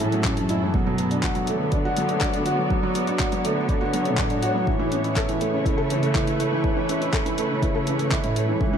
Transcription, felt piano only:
Already playing: F#3 A3 C#4 E4
0.00 E3
0.14 F#3
0.26 C#4
0.38 C#4
0.50 E4
0.63 E3
0.75 F#3
0.87 F#3
0.99 B3
1.11 D4
1.23 F#4
1.36 F#3
1.48 A3
1.61 B3
1.73 D4
1.85 F#4
1.97 F#3
2.10 A3
2.22 D4
2.34 D4
2.46 F#4
2.58 F#3
2.71 F#3
2.83 F#3
2.95 B3
3.08 D4
3.19 F#4
3.32 F#3
3.44 A3
3.57 B3
3.68 D4
3.81 F#4
3.93 F#3
4.06 A3
4.18 D4
4.30 D4
4.43 F#4
4.55 F#3
4.68 E3
4.79 E3
4.92 C#4
5.04 E4
5.17 A4
5.29 E3
5.41 A3
5.53 C#4
5.65 E4
5.78 A4
5.90 E3
6.03 A3
6.15 E4
6.27 E4
6.40 A3
6.52 E3
6.65 E3
6.77 E3
6.89 C#4
7.01 E4
7.13 A4
7.26 E3
7.38 A3
7.50 C#4
7.63 E4
7.75 A4
7.87 E3
8.00 A3
8.12 E4
8.24 E4
8.36 A3
8.49 E3
8.61 E3
8.73 E3

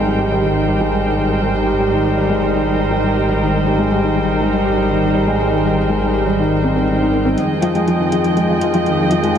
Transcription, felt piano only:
Already playing: D#3 G3 G#3
0.06 G3
0.19 G4
0.31 G3
0.44 D#3
0.68 G3
0.80 G#3
0.93 G3
1.06 D#3
1.17 G3
1.43 G#3
1.55 G3
1.67 G4
1.80 G3
1.93 D#3
2.17 G3
2.29 G#3
2.42 G3
2.54 D#3
2.67 G3
2.91 G#3
3.04 G3
3.17 G4
3.29 G3
3.41 D#3
3.66 G3
3.79 G#3
3.91 G3
4.03 D#3
4.15 G3
4.41 G#3
4.53 G3
4.65 G4
4.77 G3
4.90 D#3
5.14 G3
5.27 G#3
5.40 G3
5.52 D#3
5.64 G3
5.89 G#3
6.02 G3
6.14 G4
6.26 G3
6.38 D#3
6.64 C4
6.76 C4
6.88 D#3
7.00 D#3
7.13 C4
7.25 C4
7.37 D#3
7.62 F3
7.75 G#3
7.87 F3
8.00 D#3
8.12 F3
8.37 G#3
8.50 F3
8.62 F4
8.74 F3
8.87 D#3
9.12 F3
9.23 G#3

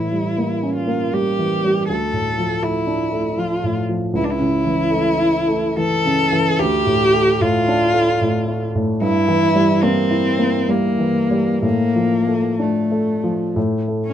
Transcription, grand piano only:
Already playing: A2 E3
0.12 G3
0.38 A#3
0.63 C#4
0.87 A#3
1.13 G3
1.39 E3
1.64 G3
1.90 D2
2.13 A2
2.38 F3
2.63 A3
2.87 D4
3.12 A3
3.37 F3
3.63 A2
3.89 F3
4.13 C#2
4.39 C#3
4.65 E3
4.90 A3
5.18 E4
5.48 A3
5.77 E3
6.06 C#3
6.32 E3
6.59 D2
6.86 A2
7.14 A3
7.41 A2
7.68 D4
7.94 A3
8.21 A2
8.48 A3
8.75 A2
9.01 G2
9.28 E3
9.55 G3
9.83 A#3
10.10 E4
10.39 A#3
10.69 G3
10.99 E3
11.31 G3
11.62 A2
11.95 F3
12.27 A3
12.59 D4
12.92 A3
13.24 F3
13.56 A2
13.88 A3

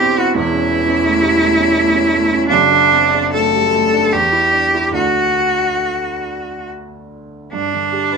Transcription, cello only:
Already playing: G4
0.20 F#4
0.37 E4
2.49 D4
3.34 A4
4.13 G4
4.95 F#4
7.53 D4

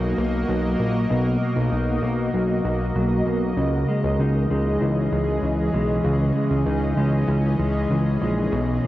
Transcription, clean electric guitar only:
Already playing: F#3 A#3 D#4
0.18 A#3
0.48 F#3
0.80 A#3
1.10 B2
1.41 A#3
1.71 D#4
2.03 A#3
2.34 F#3
2.65 A#3
2.96 F#3
3.27 A#3
3.58 C#3
3.88 G#3
4.20 D#4
4.50 G#3
4.81 E3
5.12 G#3
5.42 E3
5.74 G#3
6.05 C#3
6.35 G#3
6.67 D#4
6.97 G#3
7.28 E3
7.59 G#3
7.91 E3
8.22 G#3
8.52 B2
8.84 A#3

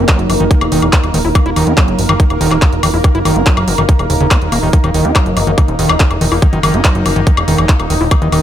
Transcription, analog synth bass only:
0.19 F#1
0.30 F#1
0.40 F#1
0.61 E1
0.72 E1
0.82 E1
1.04 D#1
1.14 D#1
1.25 D#1
1.46 D#1
1.56 D#1
1.67 D#2
1.88 F#1
1.99 F#1
2.09 F#1
2.30 D#1
2.41 D#1
2.51 D#1
2.73 E1
2.83 E1
2.94 E1
3.15 F#1
3.25 F#1
3.36 F#1
3.57 F#1
3.68 F#1
3.78 F#1
3.99 E1
4.10 D#1
4.20 D#1
4.42 D#1
4.52 D#1
4.63 D#1
4.84 D#1
4.94 D#1
5.05 D#2
5.26 F#1
5.37 F#1
5.47 F#1
5.68 D#1
5.79 D#1
5.89 D#1
6.11 E1
6.21 E1
6.32 E1
6.53 F#1
6.63 F#1
6.74 F#1
6.95 F#1
7.06 F#1
7.16 F#1
7.37 E1
7.48 E1
7.58 E1
7.80 D#1
7.90 D#1
8.01 D#1
8.22 D#1
8.32 D#1

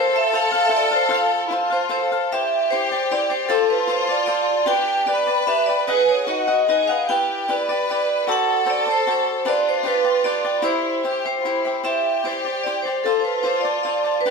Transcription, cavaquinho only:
Already playing: F4 A4 C5 F5
0.32 F4 A4 C5 F5
0.52 A4 C5 F5
0.69 F4 A4 C5 F5
0.91 A4 C5 F5
1.09 F4 A4 C5 F5
1.50 F4 A4 C5 F5
1.70 A4 C5 F5
1.89 F4 A4 C5 F5
2.12 A4 C5 F5
2.32 E4 G4 C5 D5
2.72 E4 G4 C5 D5
2.91 G4 C5 D5
3.11 E4 G4 C5 D5
3.30 G4 C5 D5
3.50 F4 A4 C5 D5
3.87 F4 A4 C5 D5
4.09 A4 C5 D5
4.27 F4 A4 C5 D5
4.66 D4 G4 B4 D5
5.06 D4 G4 B4 D5
5.27 G4 B4 D5
5.46 D4 G4 B4 D5
5.69 G4 B4 D5
5.87 D#4 B4 D#5 F#5
6.27 D#4 B4 D#5 F#5
6.47 B4 D#5 F#5
6.68 D#4 B4 D#5 F#5
6.89 B4 D#5 F#5
7.09 E4 G4 B4 D5
7.49 E4 G4 B4 D5
7.69 G4 B4 D5
7.89 E4 G4 B4 D5
8.27 F#4 A4 C5 D5
8.65 F#4 A4 C5 D5
8.85 A4 C5 D5
9.07 F#4 A4 C5 D5
9.45 D4 G4 B4 D5
9.83 D4 G4 B4 D5
10.04 G4 B4 D5
10.24 D4 G4 B4 D5
10.44 G4 B4 D5
10.62 E4 G4 C5 E5
11.03 E4 G4 C5 E5
11.25 G4 C5 E5
11.45 E4 G4 C5 E5
11.65 G4 C5 E5
11.84 E4 G4 C5 D5
12.24 E4 G4 C5 D5
12.45 G4 C5 D5
12.66 E4 G4 C5 D5
12.85 G4 C5 D5
13.05 F4 A4 C5 D5
13.44 F4 A4 C5 D5
13.64 A4 C5 D5
13.84 F4 A4 C5 D5
14.04 A4 C5 D5
14.25 D4 G4 B4 D5

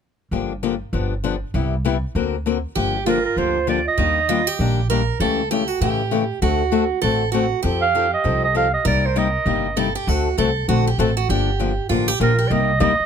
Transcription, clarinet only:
2.94 G4
3.07 A#4
3.25 A#4
3.38 C5
3.69 D5
3.88 D#5
7.82 F5
8.14 D#5
8.44 D#5
8.57 F5
8.74 D#5
8.87 D5
9.06 C5
9.18 D#5
12.22 A#4
12.48 D5 D#5
12.81 D#5

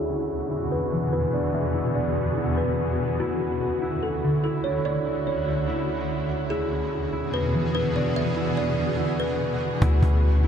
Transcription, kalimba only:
Already playing: G#4
0.72 B4
1.13 B4
1.34 D5
1.55 E5
1.95 D5
2.57 B4
3.20 F#4
4.03 A4
4.44 A4
4.64 C#5
4.85 D5
5.27 C#5
6.50 G#4
7.34 B4
7.75 B4
7.96 D5
8.16 E5
8.57 D5
9.20 B4

